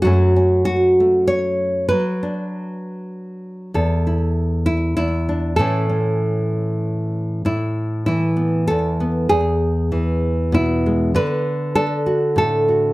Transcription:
nylon-string guitar
0.02 F#2 F#3 A3 F#4
0.07 C#4
0.36 C#4
0.65 F#4
1.00 A3
1.28 C#5
1.89 F#3 B4
2.23 D4
3.74 E2 A4
4.07 E4
4.66 E4
4.97 E2 E4
5.29 D4
5.56 A2 E3 A3 A4
5.60 C#4
5.89 C#4
7.45 A2 E4
8.06 E3 E4
8.37 B3
8.68 E2 A4
9.00 B3
9.29 E2 G#4
9.92 E3
10.52 B2 E4
10.86 G#3
11.15 D3 B4
11.75 D4 A4
12.06 F#4
12.36 A2 A4
12.69 F#4

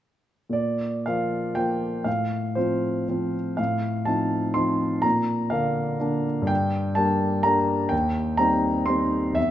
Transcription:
grand piano
0.49 A#2 D5
1.06 F3 A#3 F4 F5
1.55 F3 A#3 F4 G5
2.04 A2 F5
2.55 F3 C4 F4 C5
3.09 F3 C4 F4
3.57 A2 F5
4.05 F3 C4 D#4 A5
4.54 F3 C4 D#4 C6
5.02 A#2 A#5
5.50 D3 A#3 D4 F5
6.00 D3 A#3 D4
6.42 G2
6.47 G5
6.95 G3 A#3 D4 A5
7.43 G3 A#3 D4 A#5
7.89 D#2 G5
8.37 G3 C4 D#4 A#5
8.86 G3 C4 D#4 C6
9.33 E2 E5

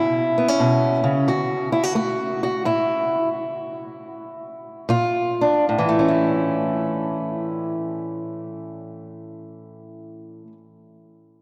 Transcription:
steel-string acoustic guitar
Already playing: A2 E4
0.38 B3
0.48 C#4
0.60 B2
1.04 C#3
1.28 D3 F#4
1.72 E4
1.83 F#4
1.95 A3 F#4
2.43 F#4
2.65 A2 E4
4.89 A#2 F4
5.41 D4
5.69 A2
5.78 E3
5.89 A3
5.99 C#4
6.08 E4

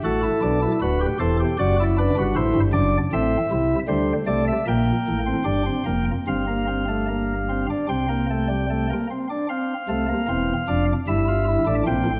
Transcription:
pipe organ
0.04 A1 A2 F#4 A4
0.23 E4
0.42 B1 B2 D4
0.62 E4
0.82 D1 D2 F#4 B4
1.01 G4
1.20 E1 E2 A4 C5
1.40 G4
1.59 F#1 F#2 F#4 D5
1.80 E4
1.98 D4 B4
2.17 G1 G2 F#4
2.36 A1 A2 E4 C5
2.55 G1 G2
2.73 F#1 F#2 D4 D5
3.13 A1 A2 C4 E5
3.51 C2 C3 E4
3.88 D2 D3 G3 C5
4.26 C2 C3 A3 D5
4.48 E5
4.67 A#1 A#2 A#3 G5
5.08 A1 A2
5.26 C4
5.44 G1 G2 D4
5.66 C4
5.86 F1 F2 A#3
6.27 G1 G2 C4 F5
6.47 A#3
6.67 C4
6.88 A3
7.08 A#3
7.49 C4
7.70 D4
7.89 C2 C3 C4 G5
8.09 A#3
8.30 A3
8.48 G3
8.70 A3
8.90 A#3
9.11 C4
9.30 D4
9.49 C4 F5
9.89 C2 C3 A3
10.09 A#3
10.28 E1 E2 C4
10.68 F1 F2 D4
11.08 G1 G2 E4 E5
11.28 F4
11.48 E4
11.66 A1 A2 D4
11.86 A#1 A#2 C4 G5
12.06 A1 A2

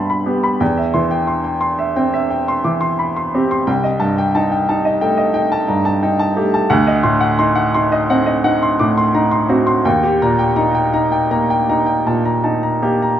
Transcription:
upright piano
Already playing: C2 G2 B3 E5 G5 A5 B5 C6
0.10 B5
0.26 B3 G4
0.44 B5
0.60 E2 G5
0.77 E5
0.94 E3 C6
1.11 G5
1.27 C6
1.44 G5
1.61 C6
1.79 E5
1.96 C4 G5
2.14 E5
2.31 G5
2.48 C6
2.64 E3 D6
2.81 C6
2.99 B5
3.16 C6
3.35 C4 G4
3.51 C6
3.67 C2 G5
3.84 D#5
4.00 G2 A5
4.18 G5
4.35 D#4 A5
4.52 G5
4.69 D#4 A5
4.85 D#5
5.01 A3 G5
5.17 D#5
5.34 D#4 G5
5.52 A5
5.68 G2 A#5
5.85 A5
6.03 D#4 G5
6.19 A5
6.36 A3 G4
6.54 A5
6.70 D2 F#5
6.87 D#5
7.03 A2 C6
7.21 F#5
7.39 D#4 C6
7.55 F#5
7.74 D#4 C6
7.92 D#5
8.10 C4 F#5
8.26 D#5
8.44 D#4 F#5
8.63 C6
8.79 A2 D6
8.98 C6
9.15 D#4 A#5
9.31 C6
9.49 C4 F#4
9.67 C6
9.85 D#2 G5
10.03 G4
10.22 A#2 A#5
10.39 G5
10.56 D#4 A#5
10.75 G5
10.94 D#4 A#5
11.12 G5
11.31 A#3 A#5
11.50 G5
11.69 D#4 A#5
11.86 G5
12.07 A#2 A5
12.25 A#5
12.44 D#4 A5
12.63 A#5
12.82 A#3 G4
13.02 A#5

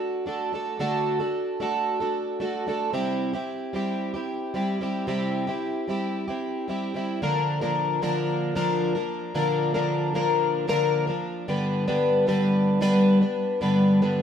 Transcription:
twelve-string acoustic guitar
Already playing: D4 F#4 A4
0.26 A3 D4 F#4 A4
0.53 A3 D4 F#4 A4
0.79 D3 A3 D4 F#4 A4
1.20 D4 F#4 A4
1.60 A3 D4 F#4 A4
2.00 D4 F#4 A4
2.40 A3 D4 F#4 A4
2.67 A3 D4 F#4 A4
2.93 C3 G3 C4 E4 G4
3.33 C4 E4 G4
3.73 G3 C4 E4 G4
4.14 C4 E4 G4
4.54 G3 C4 E4 G4
4.81 G3 C4 E4 G4
5.07 C3 G3 C4 E4 G4
5.47 C4 E4 G4
5.88 G3 C4 E4 G4
6.28 C4 E4 G4
6.68 G3 C4 E4 G4
6.94 G3 C4 E4 G4
7.22 A#2 D3 F3 A#3 D4 A#4
7.61 A#2 D3 F3 A#3 D4 A#4
8.02 A#2 D3 F3 A#3 D4 A#4
8.55 A#2 D3 F3 A#3 D4 A#4
8.95 F3 A#3 D4 A#4
9.34 A#2 D3 F3 A#3 D4 A#4
9.74 A#2 D3 F3 A#3 D4 A#4
10.14 A#2 D3 F3 A#3 D4 A#4
10.68 A#2 D3 F3 A#3 D4 A#4
11.07 F3 A#3 D4 A#4
11.48 G2 D3 G3 B3 D4 B4
11.88 G2 D3 G3 B3 D4 B4
12.27 G2 D3 G3 B3 D4 B4
12.81 G2 D3 G3 B3 D4 B4
13.21 G3 B3 D4 B4
13.61 G2 D3 G3 B3 D4 B4
14.02 G2 D3 G3 B3 D4 B4

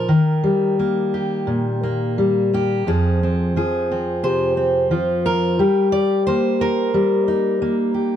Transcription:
steel-string acoustic guitar
Already playing: A#4
0.09 D#3
0.43 G3
0.79 A#3
1.14 G4
1.47 A#2
1.83 A#3
2.18 G3
2.53 A#3 G4
2.87 F2 F3 C4 G#4
3.23 C4
3.56 F3 G#4
3.91 C4
4.23 C3 C5
4.57 C4
4.91 F3 F4
5.26 A#4
5.59 G3 G4
5.92 D5
6.27 A#3 C5
6.61 A#4
6.94 G3
7.28 D#4
7.62 A#3
7.94 G4

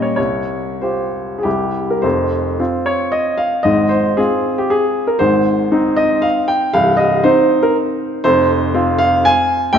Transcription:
grand piano
Already playing: A#2 G3 C#4 G4 D#5
0.02 C#5
0.16 C2 C#5
0.81 F4 G4 C5
1.38 G#4
1.43 C2 G3 E4 G4
1.90 A#4
2.02 F1 F2 C5
2.59 C4 F4
2.86 C#5
3.12 D#5
3.38 F5
3.63 G#1 G#2 D#5
3.89 C5
4.17 C4 F4 G#4
4.58 G4
4.70 G#4
5.07 A#4
5.19 G#1 G#2 C5
5.72 C4 D#4
5.96 D#5
6.22 F5
6.48 G5
6.73 C1 C2 F5
6.97 D#5
7.24 C4 D#4 C5
7.63 A#4
8.24 F1 F2 C5
8.74 C4 F4
8.99 F5
9.25 G#5
9.73 A#1 A#2 G5

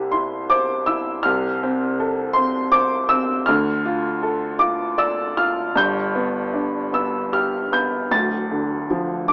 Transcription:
upright piano
Already playing: C2 C3 E4 G4 E6
0.12 E4 C6
0.50 C5 D6
0.87 E4 E6
1.23 C2 C3 F6
1.63 C4
2.00 A4
2.34 C4 C6
2.72 C5 D6
3.09 C4 E6
3.46 D2 D3 F6
3.85 F4
4.23 A4
4.59 F4 D6
4.98 D5 E6
5.37 F4 F6
5.75 G1 G2 G6
6.15 B3
6.54 D4
6.92 B3 E6
7.32 G4 F6
7.72 B3 G6
8.11 D1 D2 A6
8.51 D3
8.91 F3
9.28 D3 D6

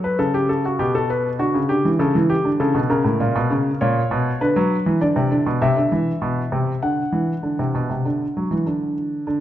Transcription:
grand piano
Already playing: F#3
0.04 B4
0.19 C#3 A4
0.34 G4
0.49 A4
0.66 F#4
0.79 B2 G4
0.95 A4
1.10 B4
1.39 D3 F#4
1.54 C#3
1.69 D3 G4
1.85 E3
1.99 C#3 A4
2.15 E3
2.30 G4
2.45 D3
2.60 C#3 A4
2.75 B2
2.90 C#3 A#4
3.04 A2
3.20 A#2
3.35 B2
3.50 C#3
3.81 A#2 C#5
4.11 B2
4.41 D3 B4
4.56 F#3
4.86 E3
5.01 D3 D5
5.16 C3
5.31 D3
5.46 B2
5.62 C3 E5
5.77 D3
5.92 E3
6.22 B2
6.52 C3
6.82 D3 F#5
7.12 E3
7.43 D3
7.59 C3
7.75 B2
7.90 C3
8.05 D3
8.37 F#3
8.51 E3
8.66 D3
9.27 D3

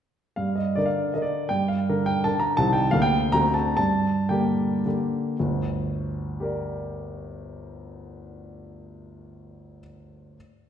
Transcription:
grand piano
0.36 G2 F5
0.56 D#5
0.75 D3 D4 A#4 D5
0.86 F5
1.14 D3 D4 A#4 D#5
1.22 D5
1.49 G2 G5
1.68 F5
1.89 D3 D4 A#4
2.06 G5
2.24 D3 D4 A#4 A5
2.40 A#5
2.57 C2 D#3 C4 G4 A5
2.73 G5
2.91 D2 D3 A#3 G4 F5
3.02 G5
3.32 D2 D3 C4 F#4 A#5
3.54 A5
3.77 G2 A5
4.29 D3 A#3 G4 G5
4.86 D3 A#3 G4
5.40 G1 D2
6.40 G4 A#4
6.44 D5

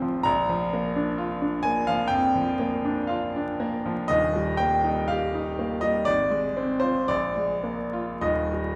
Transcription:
grand piano
Already playing: G#1 G#2 F3 C4 F4 C6
0.02 F3
0.23 A#1 A#5
0.49 F3
0.73 A#3
0.96 D4
1.18 F4
1.41 D4
1.63 A#3 G#5
1.87 F3 F5
2.08 F2 G5
2.35 F3
2.59 A#3
2.85 D4
3.07 F4 F5
3.36 D4
3.60 A#3
3.86 F3
4.08 D#1 D#2 D#5
4.36 G3
4.57 A#3 G5
4.84 D#4
5.08 G4 F5
5.35 D#4
5.59 A#3
5.81 G3 D#5
6.05 G#1 D5
6.31 G#3
6.57 C4
6.80 F4 C5
7.08 A#1 D5
7.37 G#3
7.63 A#3
7.93 F4
8.21 D#1 D#2 D#5
8.53 G3

